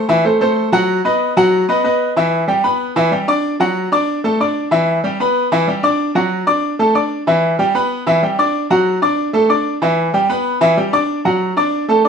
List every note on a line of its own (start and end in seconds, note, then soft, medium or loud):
0.09 0.22 E3 medium
0.09 0.22 E4 medium
0.09 0.22 E5 medium
0.25 0.38 A3 medium
0.25 0.38 A4 medium
0.25 0.38 C5 medium
0.41 0.67 A3 medium
0.41 0.67 A4 medium
0.41 0.68 C5 medium
0.72 0.99 F#3 medium
0.72 0.99 F#4 medium
0.72 0.99 F#5 medium
1.05 1.31 B3 medium
1.05 1.31 B4 medium
1.05 1.31 D#5 medium
1.37 1.63 F#3 medium
1.37 1.63 F#4 medium
1.37 1.63 F#5 medium
1.69 1.82 B3 medium
1.69 1.82 B4 medium
1.69 1.82 D#5 medium
1.84 2.11 B3 medium
1.84 2.11 B4 medium
1.84 2.11 D#5 medium
2.16 2.43 E3 medium
2.16 2.43 E4 medium
2.16 2.43 E5 medium
2.48 2.61 G3 medium
2.48 2.61 G4 medium
2.48 2.62 G5 medium
2.64 2.90 B3 medium
2.64 2.90 B4 medium
2.64 2.90 B5 medium
2.96 3.09 E3 medium
2.96 3.09 E4 medium
2.96 3.09 E5 medium
3.12 3.25 G3 medium
3.12 3.25 G4 medium
3.12 3.25 G5 medium
3.28 3.54 D4 medium
3.28 3.54 D5 medium
3.28 3.55 D6 medium
3.60 3.86 F#3 medium
3.60 3.86 F#4 medium
3.60 3.87 F#5 medium
3.92 4.18 D4 medium
3.92 4.18 D5 medium
3.92 4.18 D6 medium
4.24 4.37 A3 medium
4.24 4.37 A4 medium
4.24 4.37 A5 medium
4.40 4.66 D4 medium
4.40 4.66 D5 medium
4.40 4.67 D6 medium
4.71 4.97 E3 medium
4.71 4.98 E4 medium
4.71 4.98 E5 medium
5.04 5.17 G3 medium
5.04 5.17 G4 medium
5.04 5.17 G5 medium
5.20 5.46 B3 medium
5.20 5.46 B4 medium
5.20 5.46 B5 medium
5.52 5.65 E3 medium
5.52 5.65 E4 loud
5.52 5.65 E5 medium
5.68 5.81 G3 medium
5.68 5.81 G4 medium
5.68 5.81 G5 medium
5.83 6.09 D4 medium
5.83 6.10 D5 medium
5.83 6.10 D6 medium
6.15 6.41 F#3 medium
6.15 6.41 F#4 medium
6.15 6.42 F#5 medium
6.47 6.73 D4 medium
6.47 6.73 D5 medium
6.47 6.73 D6 medium
6.79 6.92 A3 medium
6.79 6.92 A4 medium
6.79 6.93 A5 medium
6.95 7.21 D4 medium
6.95 7.21 D5 medium
6.95 7.21 D6 medium
7.27 7.53 E3 medium
7.27 7.53 E4 medium
7.27 7.53 E5 medium
7.59 7.72 G3 medium
7.59 7.72 G4 medium
7.59 7.72 G5 medium
7.75 8.01 B3 medium
7.75 8.01 B4 medium
7.75 8.01 B5 medium
8.07 8.20 E3 medium
8.07 8.20 E4 medium
8.07 8.20 E5 medium
8.23 8.36 G3 medium
8.23 8.36 G4 medium
8.23 8.36 G5 medium
8.39 8.65 D4 medium
8.39 8.65 D5 medium
8.39 8.65 D6 medium
8.70 8.96 F#3 medium
8.70 8.97 F#4 medium
8.70 8.97 F#5 medium
9.02 9.28 D4 medium
9.02 9.28 D5 medium
9.02 9.29 D6 medium
9.33 9.47 A3 medium
9.33 9.47 A4 medium
9.33 9.47 A5 medium
9.49 9.76 D4 medium
9.49 9.76 D5 medium
9.49 9.76 D6 medium
9.82 10.08 E3 medium
9.82 10.08 E4 medium
9.82 10.08 E5 medium
10.14 10.27 G3 medium
10.14 10.27 G4 medium
10.14 10.27 G5 medium
10.29 10.56 B3 medium
10.29 10.56 B4 medium
10.29 10.56 B5 medium
10.61 10.74 E3 loud
10.61 10.74 E4 medium
10.61 10.74 E5 medium
10.77 10.90 G3 medium
10.77 10.90 G4 medium
10.77 10.91 G5 medium
10.93 11.19 D4 medium
10.93 11.19 D5 medium
10.93 11.19 D6 medium
11.25 11.51 F#3 medium
11.25 11.51 F#4 medium
11.25 11.51 F#5 medium
11.57 11.83 D4 medium
11.57 11.83 D5 medium
11.57 11.83 D6 medium
11.88 12.02 A3 medium
11.88 12.02 A4 medium
11.88 12.02 A5 medium
12.05 12.09 D4 medium
12.05 12.09 D5 medium
12.05 12.09 D6 medium